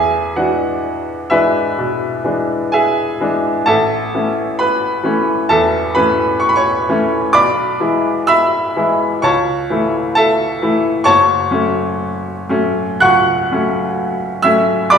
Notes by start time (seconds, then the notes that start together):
Already playing: E2 G#4 E5 G#5
0.36 E3 G#3 D4 F#4 F#5
1.30 E3 G#3 D4 E4 B4 E5
1.78 B2
2.24 E3 G#3 D4
2.72 G#4 E5 G#5
3.21 E3 G#3 D4
3.66 A1 A4 E5 A5
4.15 E3 A3 C#4
4.59 B4 B5
5.03 E3 A3 C#4
5.49 E2 A4 E5 A5
5.95 E3 A3 C#4 B4 B5
6.40 C#6
6.49 B5
6.56 C#5 C#6
6.89 E3 A3 C#4
7.33 B1 D5 B5 D6
7.80 E3 G#3 E4
8.27 E5 B5 E6
8.77 E3 G#3 E4
9.22 C#2 C#5 A5 C#6
9.70 E3 A3 E4
10.15 A4 E5 A5
10.62 E3 A3 E4
11.04 F#1 C#5 A5 C#6
11.51 F#3 A3 C#4
12.49 F#3 A3 C#4
13.00 C#2 F#5 C#6 F#6
13.51 F#3 A3 C#4
14.42 F#3 A3 C#4 E5 E6
14.90 B1 D5 B5 D6